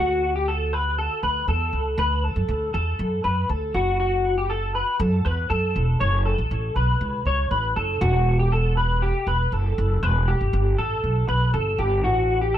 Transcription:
0.00 1.07 D2 loud
0.00 0.34 F#4 medium
0.36 0.48 G4 medium
0.48 0.73 A4 medium
0.73 0.98 B4 medium
0.98 1.23 A4 medium
1.23 1.44 D2 medium
1.23 1.48 B4 medium
1.48 1.70 E2 medium
1.48 1.96 A4 medium
1.73 1.95 C#2 medium
1.98 2.30 D2 loud
1.98 2.24 B4 loud
2.24 2.71 A4 medium
2.36 2.47 F#2 medium
2.48 2.70 D2 medium
2.74 2.96 E2 medium
2.74 3.21 A4 medium
2.99 3.21 F#2 medium
3.24 3.46 F#2 medium
3.24 3.49 B4 medium
3.49 3.71 D2 medium
3.49 3.75 A4 medium
3.74 4.81 F#1 medium
3.74 3.99 F#4 medium
4.00 4.35 F#4 medium
4.38 4.50 G4 medium
4.50 4.75 A4 medium
4.75 5.00 B4 medium
5.00 5.21 F#2 loud
5.00 5.25 A4 medium
5.25 5.47 E2 medium
5.25 5.49 B4 medium
5.50 5.72 F#2 medium
5.50 5.97 A4 medium
5.76 5.97 E1 medium
6.00 6.33 F#1 medium
6.00 6.25 C#5 loud
6.25 6.73 A4 medium
6.38 6.49 A1 medium
6.51 6.72 A1 medium
6.76 6.97 B1 medium
6.76 7.23 B4 medium
7.01 7.22 C#2 medium
7.25 7.47 C#2 medium
7.25 7.51 C#5 medium
7.51 7.72 A1 medium
7.51 7.76 B4 medium
7.76 7.98 F#1 medium
7.76 8.02 A4 medium
8.01 9.11 E1 loud
8.01 8.37 F#4 loud
8.39 8.52 G4 medium
8.52 8.77 A4 medium
8.77 9.02 B4 medium
9.02 9.27 G4 medium
9.27 9.48 E1 loud
9.27 9.53 B4 medium
9.52 9.74 F#1 medium
9.52 10.03 A4 medium
9.78 9.99 F#1 loud
10.03 10.35 E1 loud
10.03 10.28 B4 loud
10.28 10.75 G4 medium
10.41 10.51 G1 medium
10.53 10.74 G1 loud
10.78 11.00 A1 medium
10.78 11.26 A4 medium
11.04 11.25 B1 medium
11.28 11.50 B1 medium
11.28 11.53 B4 medium
11.54 11.75 G1 medium
11.54 11.79 A4 medium
11.78 12.04 G1 medium
11.78 12.04 G4 medium
12.04 12.58 A1 loud
12.04 12.39 F#4 medium
12.41 12.54 G4 medium
12.54 12.58 A4 medium

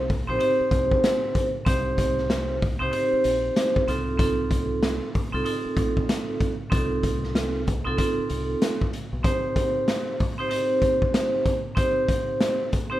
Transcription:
0.00 0.24 C2 loud
0.10 kick loud
0.10 open hi-hat medium
0.27 0.38 A#1 loud
0.27 0.38 C4 medium
0.27 0.38 D#4 medium
0.27 0.39 G4 medium
0.27 0.40 C5 loud
0.39 1.43 C4 medium
0.39 1.43 D#4 medium
0.39 1.44 G4 medium
0.39 1.44 C5 loud
0.39 closed hi-hat loud
0.60 muted fingered electric bass stroke soft
0.71 0.96 C2 medium
0.71 kick medium
0.71 closed hi-hat medium
0.91 kick medium
1.04 cross-stick medium
1.04 snare loud
1.04 closed hi-hat loud
1.35 kick loud
1.35 closed hi-hat medium
1.65 2.77 C2 loud
1.65 2.55 C4 medium
1.65 2.55 D#4 medium
1.65 2.55 G4 medium
1.65 2.56 C5 medium
1.65 kick loud
1.65 closed hi-hat medium
1.98 kick medium
1.98 closed hi-hat medium
2.18 snare soft
2.30 cross-stick medium
2.30 snare loud
2.30 closed hi-hat medium
2.62 kick loud
2.62 open hi-hat medium
2.79 2.90 C2 medium
2.79 2.90 C4 loud
2.79 2.91 D#4 medium
2.79 2.92 G4 medium
2.79 2.93 C5 loud
2.91 3.81 C4 medium
2.91 3.82 D#4 medium
2.91 3.82 G4 medium
2.91 3.82 C5 loud
2.91 closed hi-hat loud
3.13 muted fingered electric bass stroke soft
3.24 3.49 A#1 medium
3.24 closed hi-hat medium
3.56 cross-stick medium
3.56 snare loud
3.56 closed hi-hat loud
3.76 kick medium
3.87 4.99 C2 loud
3.87 4.16 C4 medium
3.87 4.17 D#4 medium
3.87 4.18 F4 medium
3.87 4.18 A4 loud
3.87 closed hi-hat medium
4.18 5.07 C4 medium
4.18 5.08 D#4 medium
4.18 5.08 F4 medium
4.18 5.09 A4 loud
4.18 kick loud
4.18 closed hi-hat medium
4.51 kick loud
4.51 closed hi-hat medium
4.83 cross-stick medium
4.83 snare loud
4.83 closed hi-hat medium
5.15 kick loud
5.15 open hi-hat medium
5.32 5.43 C2 medium
5.32 5.43 C4 medium
5.32 5.44 D#4 medium
5.32 5.45 F4 medium
5.32 5.46 A4 loud
5.44 6.48 C4 medium
5.44 6.49 D#4 medium
5.44 6.49 F4 medium
5.44 6.49 A4 loud
5.44 closed hi-hat loud
5.65 muted fingered electric bass stroke soft
5.77 6.01 A1 medium
5.77 kick medium
5.77 closed hi-hat medium
5.97 kick medium
6.09 cross-stick medium
6.09 snare loud
6.09 closed hi-hat loud
6.41 kick loud
6.41 closed hi-hat medium
6.70 7.82 C2 loud
6.70 7.60 C4 medium
6.70 7.60 D#4 medium
6.70 7.61 F4 medium
6.70 7.61 A4 loud
6.70 kick loud
6.70 closed hi-hat medium
7.03 kick medium
7.03 closed hi-hat medium
7.23 snare soft
7.35 cross-stick medium
7.35 snare loud
7.35 closed hi-hat medium
7.67 kick medium
7.67 closed hi-hat medium
7.84 7.96 C2 medium
7.84 7.96 C4 medium
7.84 7.97 D#4 medium
7.84 7.98 F4 medium
7.84 7.99 A4 loud
7.98 8.87 C4 medium
7.98 8.87 D#4 medium
7.98 8.88 F4 medium
7.98 8.88 A4 loud
7.98 kick medium
7.98 closed hi-hat loud
8.18 muted fingered electric bass stroke soft
8.30 8.54 C2 medium
8.30 closed hi-hat medium
8.62 cross-stick medium
8.62 snare loud
8.62 closed hi-hat loud
8.81 kick medium
8.93 closed hi-hat medium
9.13 9.22 B1 medium
9.23 10.13 C4 medium
9.23 10.13 D#4 medium
9.23 10.14 G4 medium
9.23 10.14 C5 loud
9.23 kick loud
9.23 closed hi-hat medium
9.56 kick medium
9.56 closed hi-hat medium
9.88 cross-stick medium
9.88 snare loud
9.88 closed hi-hat medium
10.20 kick loud
10.20 open hi-hat medium
10.38 10.48 C4 medium
10.38 10.49 D#4 medium
10.38 10.50 G4 medium
10.38 10.50 C5 loud
10.49 11.53 C4 medium
10.49 11.54 D#4 medium
10.49 11.54 G4 medium
10.49 11.55 C5 loud
10.49 closed hi-hat loud
10.82 kick medium
10.82 closed hi-hat medium
11.02 kick medium
11.14 cross-stick medium
11.14 snare loud
11.14 closed hi-hat loud
11.46 kick loud
11.46 closed hi-hat medium
11.75 12.65 C4 medium
11.75 12.65 D#4 medium
11.75 12.66 G4 medium
11.75 12.66 C5 loud
11.75 kick loud
11.75 closed hi-hat medium
12.09 kick loud
12.09 closed hi-hat medium
12.40 cross-stick medium
12.40 snare loud
12.40 closed hi-hat medium
12.73 kick loud
12.73 closed hi-hat medium
12.90 13.00 C4 loud
12.90 13.00 D#4 medium
12.90 13.00 G4 medium
12.90 13.00 C5 loud

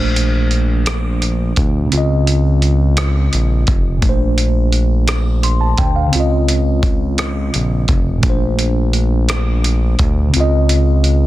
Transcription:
0.00 1.53 A#1 loud
0.00 1.85 A#2 medium
0.00 1.87 A3 medium
0.00 1.89 D4 medium
0.00 1.91 C5 medium
0.16 closed hi-hat medium
0.51 closed hi-hat soft
0.86 cross-stick loud
0.86 closed hi-hat soft
1.22 closed hi-hat soft
1.56 1.89 D2 medium
1.56 kick medium
1.56 closed hi-hat soft
1.86 3.95 C#3 medium
1.86 3.97 C4 medium
1.92 3.29 C#2 loud
1.92 3.99 F4 medium
1.92 closed hi-hat medium
1.98 4.01 D#5 medium
2.27 closed hi-hat soft
2.62 closed hi-hat soft
2.97 cross-stick medium
2.97 closed hi-hat medium
3.33 3.65 A#1 medium
3.33 closed hi-hat soft
3.67 3.99 F1 medium
3.67 kick medium
3.67 closed hi-hat soft
3.98 6.06 A#2 medium
3.98 6.08 A3 medium
4.02 5.74 A#1 loud
4.02 6.10 D4 medium
4.02 kick loud
4.02 closed hi-hat medium
4.09 6.12 C5 medium
4.38 closed hi-hat soft
4.72 closed hi-hat soft
5.08 cross-stick medium
5.08 closed hi-hat medium
5.43 5.60 C6 medium
5.43 closed hi-hat soft
5.61 5.77 A5 medium
5.77 6.10 D2 medium
5.77 5.95 G5 medium
5.77 kick medium
5.77 closed hi-hat soft
5.96 6.29 F5 medium
6.08 8.17 C#3 medium
6.12 7.50 C#2 loud
6.12 8.19 C4 medium
6.12 8.21 F4 medium
6.12 closed hi-hat medium
6.20 8.23 D#5 medium
6.48 closed hi-hat medium
6.83 kick medium
6.83 closed hi-hat soft
7.18 cross-stick medium
7.18 closed hi-hat medium
7.54 7.86 A#1 medium
7.54 closed hi-hat soft
7.88 8.20 F1 medium
7.88 kick medium
7.88 closed hi-hat soft
8.18 10.27 A#2 medium
8.18 10.29 A3 medium
8.23 9.95 A#1 loud
8.23 10.31 D4 medium
8.23 kick loud
8.23 closed hi-hat medium
8.29 10.33 C5 medium
8.59 closed hi-hat soft
8.93 closed hi-hat soft
9.29 cross-stick loud
9.29 closed hi-hat medium
9.64 closed hi-hat soft
9.99 10.31 D2 medium
9.99 kick medium
9.99 closed hi-hat soft
10.29 11.27 C#3 medium
10.29 11.27 C4 medium
10.34 11.27 C#2 loud
10.34 11.27 F4 medium
10.34 closed hi-hat medium
10.40 11.27 D#5 medium
10.69 closed hi-hat soft
11.04 closed hi-hat soft

